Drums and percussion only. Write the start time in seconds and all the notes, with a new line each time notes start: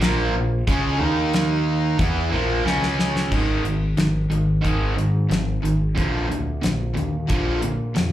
0.01 snare, closed hi-hat
0.68 kick, closed hi-hat
1.33 snare, closed hi-hat
1.99 kick, closed hi-hat
2.67 snare
2.83 snare
2.99 snare
3.16 snare
3.32 kick, crash
3.65 closed hi-hat
3.97 snare, closed hi-hat
4.31 closed hi-hat
4.65 kick, closed hi-hat
4.98 closed hi-hat
5.31 snare, closed hi-hat
5.65 closed hi-hat
5.98 kick, closed hi-hat
6.32 closed hi-hat
6.63 snare, closed hi-hat
6.97 closed hi-hat
7.29 kick, closed hi-hat
7.62 closed hi-hat
7.96 snare, closed hi-hat